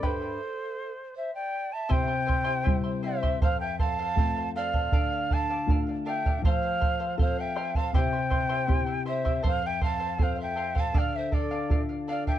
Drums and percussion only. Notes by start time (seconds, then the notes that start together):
0.03 bombo rim, bombo low
1.91 bombo low
2.29 bombo low
2.67 bombo low
3.23 bombo low
3.42 bombo low
3.79 bombo low
4.17 bombo low
4.74 bombo low
4.92 bombo low
5.31 bombo low
5.68 bombo low
6.26 bombo low
6.44 bombo low
6.82 bombo low
7.19 bombo low
7.57 bombo rim
7.75 bombo low
7.94 bombo low
8.31 bombo low
8.69 bombo low
9.26 bombo low
9.44 bombo low
9.81 bombo low
10.19 bombo low
10.76 bombo low
10.94 bombo low
11.32 bombo low
11.70 bombo low
12.27 bombo low